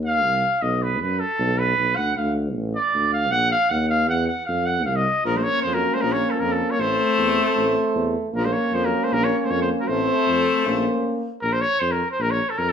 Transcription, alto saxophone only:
5.24 F3
5.36 A3
5.45 A#3
5.65 F3
5.75 F#3
5.95 A3
6.03 F3
6.13 A#3
6.34 F3
6.42 F3
6.53 F3
6.73 A#3
6.80 A3
8.35 F3
8.46 A3
8.55 A#3
8.75 F3
8.84 F#3
9.04 A3
9.13 F3
9.24 A#3
9.39 A3 A#3
9.52 A#3
9.62 A3
9.81 F#3
9.90 A3

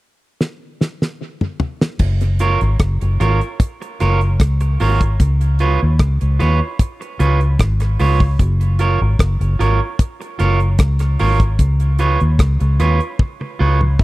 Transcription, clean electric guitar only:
2.40 F4 A#4 C#5
3.20 F4 A#4 C#5
3.82 muted clean electric guitar stroke
4.00 F4 A#4 C#5
4.61 muted clean electric guitar stroke
4.80 F4 A#4 C#5
5.60 F4 B4 C#5
6.39 F4 B4 C#5
7.01 muted clean electric guitar stroke
7.19 F4 B4 C#5
7.81 muted clean electric guitar stroke
8.00 F4 B4 C#5
8.79 F4 A#4 C#5
9.59 F4 A#4 C#5
10.21 muted clean electric guitar stroke
10.39 F4 A#4 C#5
11.00 muted clean electric guitar stroke
11.20 F4 A#4 C#5
11.99 F4 B4 C#5
12.80 F4 B4 C#5
13.41 muted clean electric guitar stroke
13.59 F4 B4 C#5

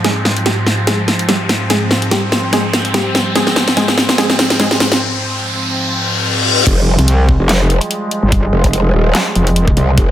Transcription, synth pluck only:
0.04 G#3 G#4
0.46 G3 G4
0.87 G#3 G#4
1.29 G3 G4
1.70 G#3 G#4
2.11 G3 G4
2.53 G#3 G#4
2.94 G3 G4
3.36 G#3 G#4
3.77 G#3 G#4
4.18 G#3 G#4
4.60 G#3 G#4

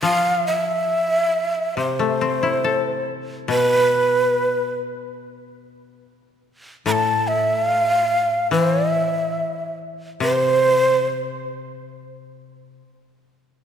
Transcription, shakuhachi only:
0.03 F5
0.47 E5
1.78 C5
3.51 B4
6.87 B5
6.92 A5
7.28 E5
7.58 F5
8.52 C5
8.92 E5
10.22 C5

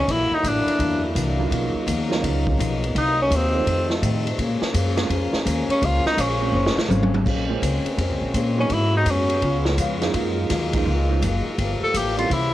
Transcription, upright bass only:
0.07 A#1
0.31 muted upright bass stroke
0.43 A1
0.66 muted upright bass stroke
0.79 E2
1.15 C2
1.51 B1
1.74 muted upright bass stroke
1.87 D#2
2.23 C#2
2.59 B1
2.95 C2
3.31 D#2
3.66 F2
4.02 A2
4.38 A#2
4.61 muted upright bass stroke
4.74 F#2
5.09 F2
5.33 muted upright bass stroke
5.46 D#2
5.68 muted upright bass stroke
5.82 C#2
6.05 muted upright bass stroke
6.17 A#1
6.52 F#1
6.76 muted upright bass stroke
6.89 G#1
7.26 A#1
7.62 C#2
7.84 muted upright bass stroke
7.98 F2
8.09 C#2
8.21 A#1
8.34 A#2
8.70 G#2
9.06 F#2
9.42 C#2
9.78 F2
10.14 F#2
10.50 D#2
10.85 C#2
11.22 F#1
11.46 muted upright bass stroke
11.58 G1
11.81 muted upright bass stroke
11.94 A1
12.30 C2

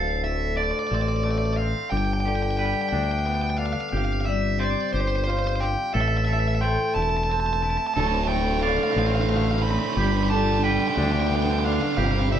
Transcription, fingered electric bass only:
Already playing: D1
0.91 A1
1.92 G1
2.92 D2
3.93 G1
4.94 G1
5.95 A1
6.96 E1
7.97 D1
8.96 A1
9.97 G1
10.97 D2
11.98 G1

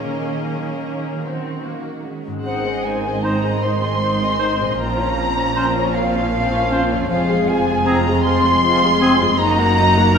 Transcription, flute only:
2.44 F#5
2.84 G#5
3.23 A#5
3.61 C6
4.77 A#5
5.94 F5
7.09 F5
7.48 G#5
7.86 A#5
8.24 C6
9.39 A#5

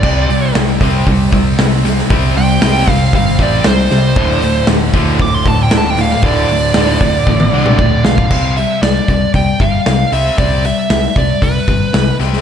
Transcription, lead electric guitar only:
Already playing: D5
2.37 G5
2.90 F5
3.15 F5
3.42 D5
3.66 C5
5.22 D6
5.34 C6
5.48 A5
5.63 G5
5.77 A5
5.90 G5
6.01 F5
6.26 D5
7.78 D5
8.05 F5
8.32 F5
8.57 E5
8.82 D5
9.35 G5
9.61 F5
10.13 E5
10.38 D5
10.66 E5
11.18 D5
11.43 B4

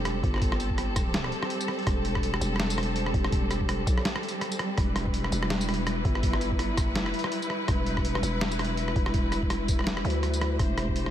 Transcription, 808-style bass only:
Already playing: E1
0.23 G1
1.87 E1
2.41 E1
3.14 E1
3.87 B1
4.78 E1
5.32 E1
6.05 G1
6.81 F#1
7.69 E1
8.23 E1
8.96 E1
10.05 D2
10.59 E1

